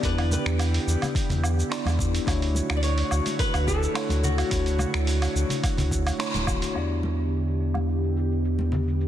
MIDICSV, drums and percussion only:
0, 0, Header, 1, 2, 480
1, 0, Start_track
1, 0, Tempo, 560748
1, 26, Time_signature, 4, 2, 24, 8
1, 7772, End_track
2, 0, Start_track
2, 0, Title_t, "Drums"
2, 26, Note_on_c, 9, 36, 108
2, 29, Note_on_c, 9, 46, 63
2, 36, Note_on_c, 9, 69, 39
2, 111, Note_off_c, 9, 36, 0
2, 115, Note_off_c, 9, 46, 0
2, 121, Note_off_c, 9, 69, 0
2, 158, Note_on_c, 9, 46, 28
2, 158, Note_on_c, 9, 77, 70
2, 244, Note_off_c, 9, 46, 0
2, 244, Note_off_c, 9, 77, 0
2, 267, Note_on_c, 9, 63, 82
2, 269, Note_on_c, 9, 64, 68
2, 273, Note_on_c, 9, 69, 66
2, 353, Note_off_c, 9, 63, 0
2, 354, Note_off_c, 9, 64, 0
2, 359, Note_off_c, 9, 69, 0
2, 395, Note_on_c, 9, 26, 72
2, 402, Note_on_c, 9, 69, 28
2, 481, Note_off_c, 9, 26, 0
2, 487, Note_off_c, 9, 69, 0
2, 508, Note_on_c, 9, 46, 63
2, 508, Note_on_c, 9, 77, 80
2, 515, Note_on_c, 9, 69, 41
2, 594, Note_off_c, 9, 46, 0
2, 594, Note_off_c, 9, 77, 0
2, 601, Note_off_c, 9, 69, 0
2, 637, Note_on_c, 9, 46, 41
2, 722, Note_off_c, 9, 46, 0
2, 757, Note_on_c, 9, 69, 71
2, 843, Note_off_c, 9, 69, 0
2, 874, Note_on_c, 9, 46, 31
2, 874, Note_on_c, 9, 77, 76
2, 877, Note_on_c, 9, 64, 69
2, 878, Note_on_c, 9, 63, 56
2, 881, Note_on_c, 9, 69, 31
2, 959, Note_off_c, 9, 46, 0
2, 959, Note_off_c, 9, 77, 0
2, 963, Note_off_c, 9, 64, 0
2, 964, Note_off_c, 9, 63, 0
2, 966, Note_off_c, 9, 69, 0
2, 984, Note_on_c, 9, 36, 111
2, 991, Note_on_c, 9, 46, 59
2, 998, Note_on_c, 9, 69, 39
2, 1070, Note_off_c, 9, 36, 0
2, 1077, Note_off_c, 9, 46, 0
2, 1083, Note_off_c, 9, 69, 0
2, 1109, Note_on_c, 9, 64, 89
2, 1114, Note_on_c, 9, 46, 29
2, 1121, Note_on_c, 9, 69, 28
2, 1195, Note_off_c, 9, 64, 0
2, 1200, Note_off_c, 9, 46, 0
2, 1206, Note_off_c, 9, 69, 0
2, 1229, Note_on_c, 9, 77, 83
2, 1235, Note_on_c, 9, 69, 73
2, 1314, Note_off_c, 9, 77, 0
2, 1321, Note_off_c, 9, 69, 0
2, 1365, Note_on_c, 9, 69, 32
2, 1450, Note_off_c, 9, 69, 0
2, 1469, Note_on_c, 9, 26, 70
2, 1469, Note_on_c, 9, 46, 60
2, 1476, Note_on_c, 9, 69, 41
2, 1555, Note_off_c, 9, 26, 0
2, 1555, Note_off_c, 9, 46, 0
2, 1562, Note_off_c, 9, 69, 0
2, 1588, Note_on_c, 9, 63, 82
2, 1597, Note_on_c, 9, 46, 31
2, 1597, Note_on_c, 9, 77, 75
2, 1604, Note_on_c, 9, 69, 30
2, 1673, Note_off_c, 9, 63, 0
2, 1683, Note_off_c, 9, 46, 0
2, 1683, Note_off_c, 9, 77, 0
2, 1689, Note_off_c, 9, 69, 0
2, 1703, Note_on_c, 9, 36, 99
2, 1716, Note_on_c, 9, 69, 72
2, 1789, Note_off_c, 9, 36, 0
2, 1801, Note_off_c, 9, 69, 0
2, 1836, Note_on_c, 9, 46, 44
2, 1843, Note_on_c, 9, 69, 33
2, 1922, Note_off_c, 9, 46, 0
2, 1929, Note_off_c, 9, 69, 0
2, 1943, Note_on_c, 9, 36, 101
2, 1949, Note_on_c, 9, 46, 62
2, 1949, Note_on_c, 9, 77, 76
2, 1956, Note_on_c, 9, 69, 37
2, 2028, Note_off_c, 9, 36, 0
2, 2035, Note_off_c, 9, 46, 0
2, 2035, Note_off_c, 9, 77, 0
2, 2041, Note_off_c, 9, 69, 0
2, 2074, Note_on_c, 9, 46, 30
2, 2160, Note_off_c, 9, 46, 0
2, 2180, Note_on_c, 9, 63, 83
2, 2192, Note_on_c, 9, 69, 61
2, 2266, Note_off_c, 9, 63, 0
2, 2277, Note_off_c, 9, 69, 0
2, 2309, Note_on_c, 9, 26, 73
2, 2309, Note_on_c, 9, 77, 81
2, 2316, Note_on_c, 9, 69, 30
2, 2395, Note_off_c, 9, 26, 0
2, 2395, Note_off_c, 9, 77, 0
2, 2402, Note_off_c, 9, 69, 0
2, 2421, Note_on_c, 9, 46, 65
2, 2427, Note_on_c, 9, 69, 41
2, 2506, Note_off_c, 9, 46, 0
2, 2513, Note_off_c, 9, 69, 0
2, 2548, Note_on_c, 9, 46, 43
2, 2633, Note_off_c, 9, 46, 0
2, 2663, Note_on_c, 9, 77, 76
2, 2669, Note_on_c, 9, 69, 69
2, 2748, Note_off_c, 9, 77, 0
2, 2755, Note_off_c, 9, 69, 0
2, 2789, Note_on_c, 9, 46, 33
2, 2791, Note_on_c, 9, 63, 54
2, 2796, Note_on_c, 9, 69, 31
2, 2875, Note_off_c, 9, 46, 0
2, 2877, Note_off_c, 9, 63, 0
2, 2882, Note_off_c, 9, 69, 0
2, 2903, Note_on_c, 9, 36, 108
2, 2904, Note_on_c, 9, 46, 65
2, 2911, Note_on_c, 9, 69, 42
2, 2989, Note_off_c, 9, 36, 0
2, 2990, Note_off_c, 9, 46, 0
2, 2996, Note_off_c, 9, 69, 0
2, 3029, Note_on_c, 9, 46, 31
2, 3029, Note_on_c, 9, 77, 83
2, 3036, Note_on_c, 9, 69, 29
2, 3115, Note_off_c, 9, 46, 0
2, 3115, Note_off_c, 9, 77, 0
2, 3122, Note_off_c, 9, 69, 0
2, 3144, Note_on_c, 9, 36, 58
2, 3151, Note_on_c, 9, 69, 70
2, 3229, Note_off_c, 9, 36, 0
2, 3236, Note_off_c, 9, 69, 0
2, 3277, Note_on_c, 9, 69, 31
2, 3363, Note_off_c, 9, 69, 0
2, 3385, Note_on_c, 9, 26, 72
2, 3385, Note_on_c, 9, 46, 66
2, 3385, Note_on_c, 9, 77, 78
2, 3391, Note_on_c, 9, 69, 41
2, 3470, Note_off_c, 9, 26, 0
2, 3470, Note_off_c, 9, 46, 0
2, 3470, Note_off_c, 9, 77, 0
2, 3477, Note_off_c, 9, 69, 0
2, 3501, Note_on_c, 9, 63, 78
2, 3512, Note_on_c, 9, 46, 31
2, 3518, Note_on_c, 9, 69, 28
2, 3587, Note_off_c, 9, 63, 0
2, 3597, Note_off_c, 9, 46, 0
2, 3604, Note_off_c, 9, 69, 0
2, 3625, Note_on_c, 9, 64, 89
2, 3628, Note_on_c, 9, 69, 72
2, 3710, Note_off_c, 9, 64, 0
2, 3713, Note_off_c, 9, 69, 0
2, 3751, Note_on_c, 9, 46, 42
2, 3751, Note_on_c, 9, 77, 86
2, 3757, Note_on_c, 9, 69, 31
2, 3836, Note_off_c, 9, 46, 0
2, 3836, Note_off_c, 9, 77, 0
2, 3843, Note_off_c, 9, 69, 0
2, 3863, Note_on_c, 9, 46, 65
2, 3864, Note_on_c, 9, 36, 111
2, 3869, Note_on_c, 9, 69, 41
2, 3948, Note_off_c, 9, 46, 0
2, 3950, Note_off_c, 9, 36, 0
2, 3955, Note_off_c, 9, 69, 0
2, 3990, Note_on_c, 9, 46, 30
2, 3996, Note_on_c, 9, 69, 26
2, 4075, Note_off_c, 9, 46, 0
2, 4082, Note_off_c, 9, 69, 0
2, 4096, Note_on_c, 9, 64, 77
2, 4098, Note_on_c, 9, 63, 89
2, 4102, Note_on_c, 9, 77, 70
2, 4109, Note_on_c, 9, 69, 70
2, 4181, Note_off_c, 9, 64, 0
2, 4184, Note_off_c, 9, 63, 0
2, 4187, Note_off_c, 9, 77, 0
2, 4194, Note_off_c, 9, 69, 0
2, 4229, Note_on_c, 9, 26, 78
2, 4235, Note_on_c, 9, 69, 30
2, 4314, Note_off_c, 9, 26, 0
2, 4321, Note_off_c, 9, 69, 0
2, 4342, Note_on_c, 9, 46, 67
2, 4349, Note_on_c, 9, 69, 44
2, 4428, Note_off_c, 9, 46, 0
2, 4435, Note_off_c, 9, 69, 0
2, 4469, Note_on_c, 9, 46, 47
2, 4469, Note_on_c, 9, 77, 76
2, 4475, Note_on_c, 9, 69, 28
2, 4554, Note_off_c, 9, 46, 0
2, 4554, Note_off_c, 9, 77, 0
2, 4561, Note_off_c, 9, 69, 0
2, 4591, Note_on_c, 9, 69, 72
2, 4677, Note_off_c, 9, 69, 0
2, 4701, Note_on_c, 9, 63, 57
2, 4705, Note_on_c, 9, 64, 71
2, 4710, Note_on_c, 9, 46, 33
2, 4717, Note_on_c, 9, 69, 34
2, 4786, Note_off_c, 9, 63, 0
2, 4791, Note_off_c, 9, 64, 0
2, 4796, Note_off_c, 9, 46, 0
2, 4803, Note_off_c, 9, 69, 0
2, 4823, Note_on_c, 9, 36, 110
2, 4824, Note_on_c, 9, 46, 67
2, 4824, Note_on_c, 9, 77, 75
2, 4831, Note_on_c, 9, 69, 38
2, 4909, Note_off_c, 9, 36, 0
2, 4910, Note_off_c, 9, 46, 0
2, 4910, Note_off_c, 9, 77, 0
2, 4916, Note_off_c, 9, 69, 0
2, 4943, Note_on_c, 9, 64, 85
2, 4950, Note_on_c, 9, 46, 32
2, 4957, Note_on_c, 9, 69, 28
2, 5029, Note_off_c, 9, 64, 0
2, 5036, Note_off_c, 9, 46, 0
2, 5042, Note_off_c, 9, 69, 0
2, 5063, Note_on_c, 9, 36, 58
2, 5069, Note_on_c, 9, 69, 74
2, 5149, Note_off_c, 9, 36, 0
2, 5154, Note_off_c, 9, 69, 0
2, 5192, Note_on_c, 9, 46, 33
2, 5192, Note_on_c, 9, 77, 79
2, 5199, Note_on_c, 9, 69, 32
2, 5278, Note_off_c, 9, 46, 0
2, 5278, Note_off_c, 9, 77, 0
2, 5285, Note_off_c, 9, 69, 0
2, 5305, Note_on_c, 9, 26, 75
2, 5305, Note_on_c, 9, 46, 67
2, 5312, Note_on_c, 9, 69, 43
2, 5391, Note_off_c, 9, 26, 0
2, 5391, Note_off_c, 9, 46, 0
2, 5398, Note_off_c, 9, 69, 0
2, 5428, Note_on_c, 9, 46, 32
2, 5430, Note_on_c, 9, 63, 83
2, 5435, Note_on_c, 9, 69, 29
2, 5514, Note_off_c, 9, 46, 0
2, 5516, Note_off_c, 9, 63, 0
2, 5520, Note_off_c, 9, 69, 0
2, 5539, Note_on_c, 9, 77, 81
2, 5542, Note_on_c, 9, 36, 100
2, 5546, Note_on_c, 9, 69, 75
2, 5625, Note_off_c, 9, 77, 0
2, 5627, Note_off_c, 9, 36, 0
2, 5632, Note_off_c, 9, 69, 0
2, 5668, Note_on_c, 9, 46, 47
2, 5675, Note_on_c, 9, 69, 33
2, 5754, Note_off_c, 9, 46, 0
2, 5760, Note_off_c, 9, 69, 0
2, 5781, Note_on_c, 9, 77, 48
2, 5788, Note_on_c, 9, 69, 35
2, 5867, Note_off_c, 9, 77, 0
2, 5873, Note_off_c, 9, 69, 0
2, 6020, Note_on_c, 9, 63, 80
2, 6027, Note_on_c, 9, 69, 59
2, 6106, Note_off_c, 9, 63, 0
2, 6113, Note_off_c, 9, 69, 0
2, 6156, Note_on_c, 9, 69, 29
2, 6241, Note_off_c, 9, 69, 0
2, 6270, Note_on_c, 9, 69, 36
2, 6356, Note_off_c, 9, 69, 0
2, 6397, Note_on_c, 9, 69, 27
2, 6482, Note_off_c, 9, 69, 0
2, 6508, Note_on_c, 9, 69, 63
2, 6594, Note_off_c, 9, 69, 0
2, 6628, Note_on_c, 9, 77, 67
2, 6635, Note_on_c, 9, 63, 49
2, 6635, Note_on_c, 9, 69, 30
2, 6714, Note_off_c, 9, 77, 0
2, 6720, Note_off_c, 9, 63, 0
2, 6720, Note_off_c, 9, 69, 0
2, 6749, Note_on_c, 9, 69, 34
2, 6835, Note_off_c, 9, 69, 0
2, 6875, Note_on_c, 9, 69, 28
2, 6960, Note_off_c, 9, 69, 0
2, 6990, Note_on_c, 9, 69, 63
2, 7075, Note_off_c, 9, 69, 0
2, 7116, Note_on_c, 9, 69, 28
2, 7202, Note_off_c, 9, 69, 0
2, 7230, Note_on_c, 9, 69, 37
2, 7315, Note_off_c, 9, 69, 0
2, 7350, Note_on_c, 9, 63, 70
2, 7436, Note_off_c, 9, 63, 0
2, 7464, Note_on_c, 9, 64, 84
2, 7466, Note_on_c, 9, 69, 68
2, 7550, Note_off_c, 9, 64, 0
2, 7551, Note_off_c, 9, 69, 0
2, 7597, Note_on_c, 9, 69, 29
2, 7682, Note_off_c, 9, 69, 0
2, 7709, Note_on_c, 9, 69, 37
2, 7772, Note_off_c, 9, 69, 0
2, 7772, End_track
0, 0, End_of_file